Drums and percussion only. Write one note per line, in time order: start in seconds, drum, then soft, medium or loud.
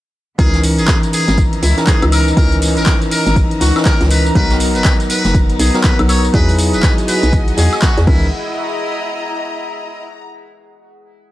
0.39 kick loud
0.39 closed hi-hat medium
0.39 ride medium
0.39 tambourine soft
0.54 snare soft
0.54 closed hi-hat medium
0.54 tambourine soft
0.63 open hi-hat loud
0.63 ride medium
0.63 tambourine medium
0.79 closed hi-hat soft
0.79 ride soft
0.79 tambourine soft
0.88 kick loud
0.88 snare loud
0.88 clap loud
0.88 closed hi-hat medium
0.88 tambourine soft
1.03 closed hi-hat medium
1.03 tambourine soft
1.13 open hi-hat loud
1.13 ride medium
1.13 tambourine medium
1.28 snare medium
1.28 closed hi-hat soft
1.28 tambourine soft
1.37 kick loud
1.37 closed hi-hat medium
1.37 ride medium
1.37 tambourine soft
1.53 closed hi-hat medium
1.62 open hi-hat loud
1.62 ride medium
1.62 tambourine medium
1.78 snare soft
1.78 closed hi-hat soft
1.78 tambourine soft
1.87 kick loud
1.87 snare loud
1.87 clap loud
1.87 closed hi-hat medium
1.87 ride medium
1.87 tambourine soft
2.02 closed hi-hat medium
2.02 high woodblock medium
2.12 open hi-hat loud
2.12 ride medium
2.12 tambourine medium
2.12 high woodblock medium
2.28 tambourine soft
2.37 kick loud
2.37 closed hi-hat medium
2.37 ride medium
2.37 tambourine soft
2.52 closed hi-hat medium
2.52 tambourine soft
2.62 open hi-hat loud
2.62 ride medium
2.62 tambourine medium
2.77 closed hi-hat soft
2.77 tambourine soft
2.86 kick loud
2.86 snare loud
2.86 clap loud
2.86 closed hi-hat medium
2.86 ride medium
2.86 tambourine soft
3.02 closed hi-hat medium
3.02 tambourine soft
3.11 open hi-hat loud
3.11 open hi-hat medium
3.11 tambourine medium
3.26 closed hi-hat soft
3.26 ride soft
3.26 tambourine soft
3.36 kick loud
3.36 closed hi-hat medium
3.36 ride medium
3.36 tambourine soft
3.51 closed hi-hat medium
3.61 snare medium
3.61 open hi-hat loud
3.61 ride medium
3.61 tambourine medium
3.76 snare soft
3.76 closed hi-hat soft
3.76 tambourine soft
3.76 high woodblock medium
3.85 kick loud
3.85 snare loud
3.85 clap loud
3.85 closed hi-hat medium
3.85 ride medium
3.85 tambourine soft
4.01 snare soft
4.01 closed hi-hat medium
4.11 open hi-hat loud
4.11 ride medium
4.11 tambourine medium
4.26 tambourine soft
4.35 kick loud
4.35 closed hi-hat medium
4.35 ride loud
4.35 tambourine soft
4.50 snare soft
4.50 closed hi-hat soft
4.50 tambourine soft
4.59 open hi-hat loud
4.59 ride medium
4.59 tambourine medium
4.75 closed hi-hat soft
4.75 ride soft
4.75 tambourine soft
4.84 kick loud
4.84 snare loud
4.84 clap loud
4.84 closed hi-hat medium
4.84 ride medium
4.84 tambourine soft
5.00 closed hi-hat medium
5.00 tambourine soft
5.10 open hi-hat loud
5.10 ride medium
5.10 tambourine medium
5.25 snare soft
5.25 closed hi-hat soft
5.25 tambourine soft
5.34 kick loud
5.34 closed hi-hat medium
5.34 ride medium
5.34 tambourine soft
5.50 closed hi-hat medium
5.59 open hi-hat loud
5.59 ride medium
5.59 tambourine medium
5.74 snare soft
5.74 closed hi-hat soft
5.74 tambourine soft
5.84 kick loud
5.84 snare loud
5.84 clap loud
5.84 closed hi-hat medium
5.84 ride loud
5.84 tambourine soft
5.99 closed hi-hat medium
5.99 high woodblock medium
6.09 open hi-hat loud
6.09 ride medium
6.09 tambourine medium
6.09 high woodblock medium
6.25 tambourine soft
6.34 kick loud
6.34 closed hi-hat medium
6.34 ride medium
6.34 tambourine soft
6.49 open hi-hat medium
6.49 tambourine soft
6.58 open hi-hat loud
6.58 ride medium
6.58 tambourine medium
6.73 closed hi-hat soft
6.73 tambourine soft
6.83 kick loud
6.83 snare loud
6.83 clap loud
6.83 closed hi-hat medium
6.83 ride medium
6.83 tambourine soft
6.98 closed hi-hat soft
6.98 tambourine soft
7.08 open hi-hat loud
7.08 open hi-hat medium
7.08 tambourine medium
7.23 closed hi-hat soft
7.23 ride soft
7.23 tambourine soft
7.33 kick loud
7.33 closed hi-hat medium
7.33 ride medium
7.33 tambourine soft
7.48 closed hi-hat medium
7.57 snare medium
7.57 open hi-hat loud
7.57 ride medium
7.57 tambourine medium
7.73 snare soft
7.73 tambourine soft
7.73 high woodblock medium
7.82 kick loud
7.82 snare loud
7.82 clap loud
7.82 closed hi-hat medium
7.82 ride medium
7.82 tambourine soft
7.97 snare soft
7.97 closed hi-hat medium
8.07 kick loud
8.07 crash medium